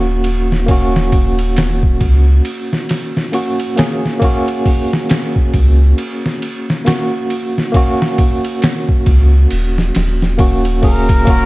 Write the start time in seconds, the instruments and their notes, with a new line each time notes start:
Already playing: sub bass D#1, tine electric piano A#3 C#4 F#4
0.24 ride
0.52 snare
0.66 tine electric piano A#3 C#4, kick, ride
0.71 tine electric piano F#4
0.96 snare
1.12 kick, ride
1.39 ride
1.56 snare, ride
1.83 kick
2.01 sub bass C#2, kick, ride
2.45 ride
2.73 snare
2.89 snare, ride
3.17 snare
3.32 tine electric piano A#3 C#4 F#4, ride
3.60 ride
3.76 tine electric piano A#3 C#4 G#4, snare, ride
4.05 snare
4.19 tine electric piano A#3 C#4, kick, ride
4.24 tine electric piano F#4
4.48 ride
4.66 kick, open hi-hat
4.93 snare
5.09 snare, ride
5.36 kick
5.54 sub bass C#2, kick, ride
5.98 ride
6.26 snare
6.42 ride
6.70 snare
6.85 tine electric piano A#3 C#4 F#4, snare, ride
7.30 ride
7.58 snare
7.72 tine electric piano A#3 C#4, kick, ride
7.76 tine electric piano F#4
8.02 snare
8.18 kick, ride
8.44 ride
8.62 snare, ride
8.89 kick
9.06 sub bass C#2, kick, ride
9.50 sub bass D#1, ride
9.78 snare
9.95 sub bass D#1, snare, ride
10.22 snare
10.38 tine electric piano A#3 C#4 F#4, kick, ride
10.65 ride
10.82 tine electric piano A#3 C#4 G#4, muted trumpet A#4, kick, open hi-hat
11.09 kick, ride
11.25 sub bass D#1, tine electric piano A#3 C#4, violin section A#3 A#4, kick, ride
11.30 tine electric piano F#4